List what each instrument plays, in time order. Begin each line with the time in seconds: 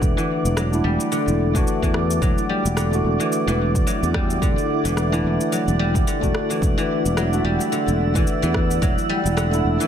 Already playing: guzheng D3 E3, tine electric piano A3 D4 F#4, ambient pad E4 F#5 D6, synth texture D5
0.02 fretless electric bass E1, kick, shaker
0.17 guzheng E3, shaker
0.45 fretless electric bass E1, shaker
0.57 guzheng F#3, cross-stick, shaker
0.71 tine electric piano A3 D4, shaker
0.75 tine electric piano E4
0.84 fretless electric bass E1, guzheng G3
1.00 shaker
1.12 guzheng D3, shaker
1.28 fretless electric bass E1, shaker
1.53 guzheng E3, tine electric piano A3 D4 F#4, kick, shaker
1.67 shaker
1.82 fretless electric bass E2, guzheng E3, kick, shaker
1.94 cross-stick
2.11 shaker
2.22 fretless electric bass E1, guzheng F#3, kick, shaker
2.38 shaker
2.49 guzheng G3
2.65 fretless electric bass E1, shaker
2.77 guzheng D3, cross-stick, shaker
2.91 tine electric piano A3 D4 F#4, shaker
3.04 fretless electric bass E1
3.20 guzheng E3, shaker
3.32 shaker
3.47 fretless electric bass E1, guzheng E3, shaker
3.75 kick, shaker
3.87 guzheng F#3, shaker
4.02 fretless electric bass E2, shaker
4.14 guzheng G3, kick, cross-stick
4.30 shaker
4.42 fretless electric bass E1, guzheng D3, kick, shaker
4.58 shaker
4.85 fretless electric bass E1, guzheng E3, shaker
4.97 cross-stick, shaker
5.10 guzheng E3, tine electric piano A3 D4 E4, shaker
5.24 fretless electric bass E1
5.41 shaker
5.52 guzheng F#3, shaker
5.68 fretless electric bass E1, shaker
5.79 guzheng G3
5.95 kick, shaker
6.07 guzheng D3, shaker
6.20 fretless electric bass E1, tine electric piano A3 D4, kick, shaker
6.24 tine electric piano F#4
6.35 cross-stick
6.50 guzheng E3, shaker
6.62 fretless electric bass E1, ambient pad E6, kick, shaker
6.78 guzheng E3, shaker
7.05 fretless electric bass E1, shaker
7.17 guzheng F#3, cross-stick, shaker
7.30 tine electric piano A3 D4, shaker
7.35 tine electric piano F#4
7.44 fretless electric bass E1, guzheng G3
7.61 shaker
7.72 guzheng D3, shaker
7.88 fretless electric bass E1, shaker
8.15 guzheng E3, kick, shaker
8.27 shaker
8.42 fretless electric bass E2, guzheng E3, shaker
8.54 kick, cross-stick
8.71 shaker
8.82 fretless electric bass E1, guzheng F#3, kick, shaker
8.98 shaker
9.09 guzheng G3
9.25 fretless electric bass E1, shaker
9.37 guzheng D3, cross-stick, shaker
9.51 tine electric piano A3 D4 E4, shaker
9.65 fretless electric bass E1
9.80 guzheng E3, shaker